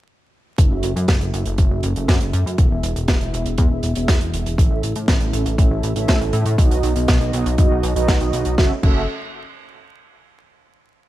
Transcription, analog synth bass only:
0.58 F#1
0.71 F#1
0.83 F#1
0.96 F#2
1.08 F#1
1.21 F#1
1.33 F#1
1.46 F#1
1.58 F#1
1.71 F#1
1.83 F#1
1.96 F#1
2.08 F#2
2.21 F#1
2.33 F#2
2.46 F#2
2.58 E1
2.71 E1
2.83 E1
2.96 E1
3.08 E1
3.21 E1
3.33 E1
3.46 E1
3.58 E2
3.71 E1
3.83 E1
3.96 E1
4.08 E1
4.21 E1
4.33 E1
4.46 E1
4.58 A1
4.71 A1
4.83 A1
4.96 A2
5.08 A1
5.21 A1
5.33 A1
5.46 A1
5.58 A1
5.71 A1
5.83 A1
5.96 A1
6.08 A2
6.21 A1
6.33 A2
6.46 A2
6.58 B1
6.71 B1
6.83 B1
6.96 B1
7.08 B1
7.21 B1
7.33 B1
7.46 B1
7.58 F#1
7.71 B1
7.83 B1
7.96 B1
8.08 B1
8.21 B1
8.33 B1
8.46 B1
8.58 F#1
8.83 F#1

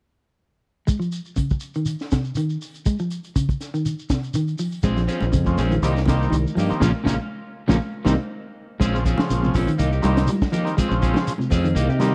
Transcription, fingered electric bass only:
4.84 A#1
5.22 A#1
5.33 F2
5.58 A#1
5.82 C2
6.32 C2
6.57 G2
6.71 muted fingered electric bass stroke
6.82 A#1
7.06 A#1
7.70 A#1
8.06 C2
8.81 A#1
9.19 muted fingered electric bass stroke
9.31 A#1
9.55 A#1
9.79 C2
10.04 C2
10.79 muted fingered electric bass stroke
10.91 A#1
11.52 F2
11.76 C2
11.89 C3

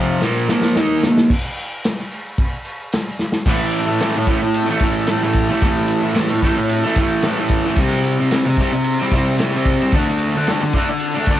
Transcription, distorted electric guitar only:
Already playing: F2 C3 F3
0.23 A#2 F3 A#3
0.49 A#2 F3 A#3
0.77 D#3 A#3 D#4
1.05 D#3 A#3
3.46 A2 E3 A3
3.87 E3 A3
4.01 A2 E3 A3
4.16 muted distorted electric guitar stroke
4.27 A2 E3 A3
4.42 muted distorted electric guitar stroke
4.67 E3 A3
4.81 A2 E3 A3
5.08 A2 E3 A3
5.23 E3 A3
5.50 E3 A3
5.62 A2 E3 A3
6.03 E3 A3
6.15 A2 E3 A3
6.30 muted distorted electric guitar stroke
6.43 A2 E3 A3
6.56 muted distorted electric guitar stroke
6.83 E3 A3
6.96 A2 E3 A3
7.24 A2 E3 A3
7.38 E3 A3
7.65 E3 A3
7.78 C3 G3 C4
8.20 G3 C4
8.32 C3 G3 C4
8.46 muted distorted electric guitar stroke
8.59 C3 G3 C4
8.73 muted distorted electric guitar stroke
8.99 G3 C4
9.12 C3 G3 C4
9.40 C3 G3 C4
9.55 G3 C4
9.81 G3 C4
9.93 D3 A3 D4
10.36 A3 D4
10.49 D3 A3 D4
10.62 muted distorted electric guitar stroke
10.75 D3 A3 D4
10.90 muted distorted electric guitar stroke
11.14 A3 D4
11.28 D3 A3 D4

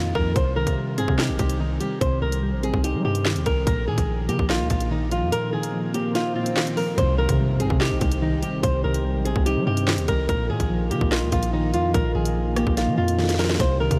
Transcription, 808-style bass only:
Already playing: F2
0.15 F2
0.36 C2
0.67 C3
0.98 G2
1.08 C3
1.29 A#1
1.39 C2
2.01 C2
2.22 C2
2.53 A#1
2.74 C2
2.94 G3
3.05 G2
3.36 D#2
3.46 C2
3.67 A#1
3.88 A#2
3.98 A#1
4.29 D3
4.39 A#1
4.60 D2
4.70 A#1
5.22 F2
6.98 C2
7.29 C3
7.60 G2
7.70 C3
7.91 A#1
8.01 C2
8.63 C2
8.84 C2
9.15 A#1
9.36 C2
9.56 G3
9.67 G2
9.98 D#2
10.08 C2
10.29 A#1
10.50 A#2
10.60 A#1
10.91 D3
11.01 A#1
11.22 D2
11.32 A#1
11.74 F2
11.94 A#1
12.15 A#1
12.67 A#1
12.87 F3
12.98 F2
13.60 C2
13.91 C3

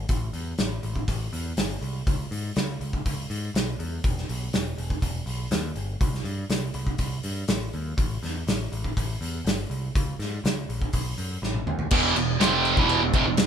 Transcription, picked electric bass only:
0.09 A1
0.33 E2
0.59 A1
0.83 A1
1.08 A1
1.33 E2
1.57 G1
1.81 C2
2.07 C#2
2.31 G#2
2.56 C#2
2.81 C#2
3.05 C#2
3.30 G#2
3.54 B1
3.79 E2
4.04 E1
4.29 B1
4.54 E1
4.78 E1
5.02 E1
5.26 B1
5.51 D#2
5.76 G1
6.01 C2
6.24 G2
6.50 C2
6.74 C2
6.99 C2
7.24 G2
7.48 A1
7.74 D#2
7.97 A1
8.23 E2
8.47 A1
8.72 A1
8.97 A1
9.21 E2
9.45 G1
9.70 C2
9.95 C#2
10.19 G#2
10.44 C#2
10.69 A#1
10.94 B1
11.18 F#2
11.42 A1
11.66 D#2
11.91 E1
12.16 E1
12.40 F1
12.77 E1
13.01 E1
13.14 F1
13.25 E1

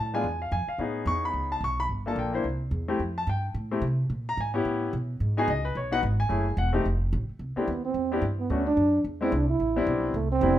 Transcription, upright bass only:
Already playing: A2
0.23 E2
0.52 F2
0.68 muted upright bass stroke
0.78 A2
1.06 E2
1.33 C#2
1.61 B1
1.89 G1
2.16 A#1
2.44 C2
2.71 E2
2.99 F2
3.27 G2
3.54 A2
3.81 C3
4.10 A#2
4.37 G#2
4.65 A2
4.93 B2
5.20 G#2
5.48 C#2
5.75 B1
6.03 G#1
6.30 F#1
6.57 E1
6.85 F1
7.13 A1
7.29 muted upright bass stroke
7.39 C2
7.57 muted upright bass stroke
7.68 D#2
7.94 E2
8.22 G2
8.50 D2
8.77 F#2
9.04 E2
9.32 C2
9.60 A1
9.87 B1
10.14 C2
10.41 F1

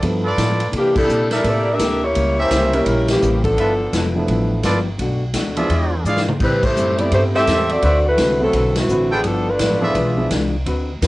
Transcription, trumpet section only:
0.24 F4 A4 B4 D5
1.32 A4 A#4 D5 E5
2.38 C#4 G4 A#4 E5
3.58 F4 A4 B4 E5
4.64 F4 A4 B4 D5
5.56 F4 G#4 D5 E5
6.05 F4 G#4 D5 F5
7.35 G4 A4 C5 E5
7.83 F#4 B4 C5 E5
9.11 F4 A4 B4 G5
9.81 F4 G#4 D5 E5

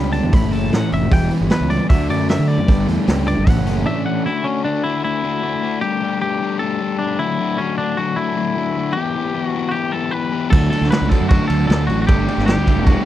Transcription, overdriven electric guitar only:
Already playing: G3 A3 G4
0.13 D4
0.33 A2
0.52 A3
0.72 C#4
0.91 E3
1.11 E3
1.31 E3
1.51 B3
1.70 G3
1.90 D3
2.09 A3
2.29 D4
2.48 D3
2.68 G3
2.87 A3
3.07 G4
3.26 D4
3.47 A2
3.66 C#4
3.86 E4
4.06 A3
4.26 D3 A3 D4 F#4
4.45 D3 A3 D4 F#4
4.64 D3 A3 D4 F#4
4.84 D3 A3 D4 F#4
5.04 D3 A3 D4 F#4
5.23 D3 A3 D4 F#4
5.43 D3 A3 D4 F#4
5.62 D3 A3 D4 F#4
5.82 G3 A3 D4 G4
6.02 G3 A3 D4 G4
6.22 G3 A3 D4 G4
6.41 G3 A3 D4 G4
6.61 G3 A3 D4 G4
6.81 G3 A3 D4 G4
7.00 G3 A3 D4 G4
7.19 D3 F#3 A3 D4 F#4
7.39 D3 F#3 A3 D4 F#4
7.58 D3 F#3 A3 D4 F#4
7.78 D3 F#3 A3 D4 F#4
7.97 D3 F#3 A3 D4 F#4
8.16 D3 F#3 A3 D4 F#4
8.36 D3 F#3 A3 D4 F#4
8.56 D3 F#3 A3 D4 F#4
8.76 D3 F#3 A3 D4 F#4
8.96 E3 B3 E4 G4
9.15 E3 B3 E4 G4
9.34 E3 B3 E4 G4
9.54 E3 B3 E4 G4
9.74 E3 B3 E4 G4
9.93 E3 B3 E4 G4
10.12 E3 B3 E4 G4
10.32 E3 B3 E4 G4
10.51 D3 F#3 A3 D4 F#4
10.71 D3 F#3 A3 D4 F#4
10.91 D3 F#3 A3 D4 F#4
11.11 D3 F#3 A3 D4 F#4
11.30 D3 F#3 A3 D4 F#4
11.49 D3 F#3 A3 D4 F#4
11.68 D3 F#3 A3 D4 F#4
11.88 D3 F#3 A3 D4 F#4
12.07 G3 A3 D4 G4
12.27 G3 A3 D4 G4
12.46 G3 A3 D4 G4
12.66 G3 A3 D4 G4
12.85 G3 A3 D4 G4

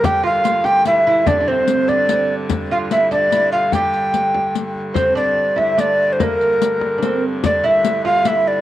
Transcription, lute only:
0.04 G4
0.23 F4
0.44 F4
0.65 G4
0.87 E4
1.07 E4
1.27 D4
1.41 D4
1.48 C4
1.89 D4
2.71 F4
2.92 E4
3.11 D4
3.32 E4
3.52 F4
3.75 G4
4.94 C4
5.15 D4
5.56 E4
5.78 D4
6.20 A#3
6.98 D4
7.03 C4
7.44 D4
7.64 E4
8.05 F4
8.25 E4

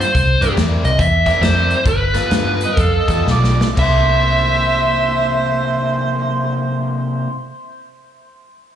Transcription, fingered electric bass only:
0.15 C2
0.41 G2
0.56 E2
0.84 C2
0.99 E2
1.41 F2
1.86 G1
2.31 G2
2.78 F2
3.09 E2
3.26 B1
3.77 C2

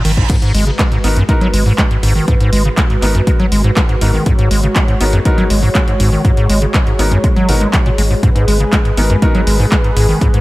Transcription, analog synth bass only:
0.05 G#1
0.54 G#1
1.04 G#1
1.54 G#1
2.03 G#1
2.53 G#1
3.02 G#1
3.52 G#1
4.02 G#1
4.51 G#1
5.01 G#1
5.50 G#1
6.00 G#1
6.50 G#1
6.99 G#1
7.49 G#1
7.98 G#1
8.48 G#1
8.97 G#1
9.47 G#1
9.97 G#1

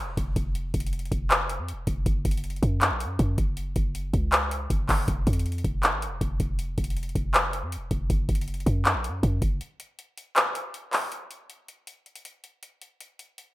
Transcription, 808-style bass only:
0.03 F1
0.17 F1
0.36 F1
0.74 F1
1.12 F1
1.59 F2
1.73 F1
1.87 F1
2.06 F#1
2.25 F#1
2.63 F#2
2.91 A#1
3.05 F#2
3.19 F#2
3.38 F#1
3.76 F#1
4.13 C#2
4.70 F#1
4.89 F#1
5.08 F1
5.27 F2
5.64 F1
5.93 G#1
6.07 F1
6.21 F1
6.40 F1
6.78 F1
7.15 F1
7.63 F2
7.77 F1
7.91 F1
8.10 F#1
8.29 F#1
8.66 F#2
8.95 A#1
9.09 F#2
9.23 F#2
9.42 F#1

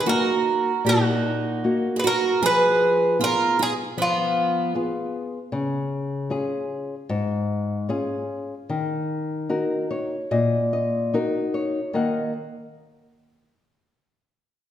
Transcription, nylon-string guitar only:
0.06 A#3 D#4 F#4
0.85 A#2
1.64 A#3 D#4 F#4
2.42 F3
3.19 B3 F4 G#4
3.98 F3
4.75 B3 F4 G#4
5.52 C#3
6.30 C#4 F4 G#4
7.09 G#2
7.89 C#4 F4 G#4
8.70 D#3
9.49 D#4 F#4 A#4
9.91 C#5
10.31 A#2 D#5
10.73 D#5
11.14 D#4 F#4 A#4
11.54 C#5
11.93 D#3 A#3 A#4 D#5 F#5

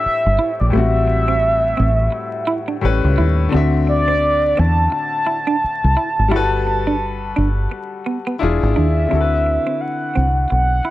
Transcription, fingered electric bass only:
0.06 muted fingered electric bass stroke
0.26 G1
0.61 A#1
0.75 A1
1.80 A1
2.84 A1
3.04 C#2
3.19 D#2
3.54 D2
4.59 E2
5.64 muted fingered electric bass stroke
5.84 C2
6.19 G#1
6.33 G1
7.38 G1
8.43 E1
8.63 G#1
8.78 D#2
9.13 D2
10.17 C2
10.52 B1

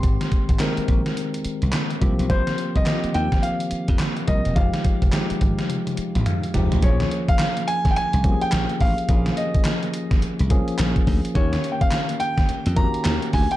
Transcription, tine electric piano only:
Already playing: D#3 G#3 C4 G4
0.59 D#3 G#3 C4 A#4
2.01 F3 A#3 C4 G4
2.86 D#3 A#3 C4 G4
2.92 F3
4.27 F3 A#3 C4 A#4
4.56 F3 G#3 D#4 G4
5.12 F3 G#3 D#4 G4
6.26 F5
6.54 F3 G#3 D#4 G4
6.82 F3 A#3 C#4 G#4
8.24 F3 A#3 C#4 G4
8.31 G#4
9.08 F3 A#3 C#4 G#4
10.50 F3 A#3 C#4 G#4
11.35 D#3 A#3 C#4 G4
12.76 D#3 A#3 C#4 F#4
12.84 G4

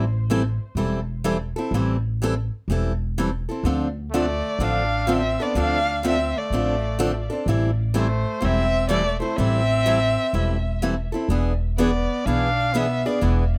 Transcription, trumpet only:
4.10 A3
4.60 D4
5.08 C4
5.40 B3
5.56 D4
6.06 C4
6.37 A3
7.95 A3
8.41 C4
8.89 A3
9.20 A3
9.37 C4
11.78 B3
12.25 D4
12.73 B3
13.06 B3

